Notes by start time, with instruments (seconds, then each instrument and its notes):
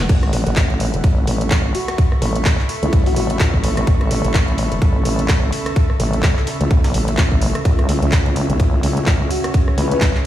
Already playing: analog synth pad E4 B4 F#5 G#5
0.09 wobble bass A1, ambient pad C#4 A4 B4, analog synth pad A4, kick, closed hi-hat, crash, ride
0.18 analog synth pad E5
0.23 cross-stick, ride
0.33 wobble bass A1, snare, open hi-hat, ride
0.47 wobble bass A1, analog synth pad B5, snare, closed hi-hat
0.56 kick, snare, clap, closed hi-hat, ride
0.70 ride
0.80 open hi-hat, ride
0.94 wobble bass E1, closed hi-hat
1.01 wobble bass A1, analog synth pad C#6, kick, closed hi-hat, ride
1.27 wobble bass A1, open hi-hat, ride
1.41 closed hi-hat
1.51 kick, snare, clap, closed hi-hat, ride
1.75 digital synth lead F#4, open hi-hat, ride
1.88 cross-stick, snare, closed hi-hat
1.98 kick, closed hi-hat, ride
2.12 cross-stick
2.22 wobble bass A1, snare, open hi-hat, ride
2.36 closed hi-hat
2.45 kick, snare, clap, closed hi-hat, ride
2.59 snare, clap
2.69 open hi-hat, ride
2.83 wobble bass C#2, digital synth lead E4, closed hi-hat
2.93 wobble bass A1, kick, closed hi-hat, ride
3.06 digital synth lead F#4, snare, open hi-hat
3.16 wobble bass A1, digital synth lead F#4, open hi-hat, ride
3.30 closed hi-hat, ride
3.39 wobble bass C#2, kick, snare, clap, closed hi-hat, ride
3.54 wobble bass A1, kick
3.64 open hi-hat, ride
3.77 wobble bass A1, cross-stick, closed hi-hat
3.87 wobble bass A1, kick, closed hi-hat, ride
4.01 cross-stick, ride
4.11 wobble bass A1, snare, open hi-hat, ride
4.24 wobble bass A1, snare, closed hi-hat
4.34 kick, snare, clap, closed hi-hat, ride
4.48 ride
4.58 open hi-hat, ride
4.72 wobble bass E1, closed hi-hat
4.82 wobble bass A1, kick, closed hi-hat, ride
5.05 wobble bass A1, open hi-hat, ride
5.19 closed hi-hat
5.28 kick, snare, clap, closed hi-hat, ride
5.52 open hi-hat, ride
5.66 cross-stick, snare, closed hi-hat
5.76 kick, closed hi-hat, ride
5.90 cross-stick
6.00 wobble bass A1, snare, open hi-hat, ride
6.13 closed hi-hat
6.23 kick, snare, clap, closed hi-hat, ride
6.37 snare, clap
6.47 snare, open hi-hat, ride
6.61 wobble bass C#2, closed hi-hat, ride
6.71 wobble bass B1, kick, closed hi-hat, ride
6.84 snare, open hi-hat, ride
6.94 wobble bass A1, open hi-hat, ride
7.08 closed hi-hat, ride
7.17 kick, snare, clap, closed hi-hat, ride
7.32 wobble bass A1, kick
7.41 open hi-hat, ride
7.55 cross-stick, closed hi-hat
7.65 wobble bass C#2, analog synth pad C#4, ambient pad G#4 E5, kick, closed hi-hat, ride
7.79 cross-stick, ride
7.85 wobble bass C#2, analog synth pad G#4, snare, open hi-hat, ride
8.02 wobble bass C#2, snare, closed hi-hat
8.12 kick, snare, clap, closed hi-hat, ride
8.26 ride
8.36 open hi-hat, ride
8.50 wobble bass B1, analog synth pad C#5, closed hi-hat
8.60 wobble bass C#2, kick, closed hi-hat, ride
8.83 wobble bass C#2, open hi-hat, ride
8.97 closed hi-hat
9.06 kick, snare, clap, closed hi-hat, ride
9.31 digital synth lead F#4, open hi-hat, ride
9.44 cross-stick, snare, closed hi-hat
9.54 kick, closed hi-hat, ride
9.68 cross-stick
9.78 wobble bass C#2, digital synth lead B4, snare, open hi-hat, ride
9.91 digital synth lead B4, closed hi-hat
10.01 kick, snare, clap, closed hi-hat, ride
10.15 snare, clap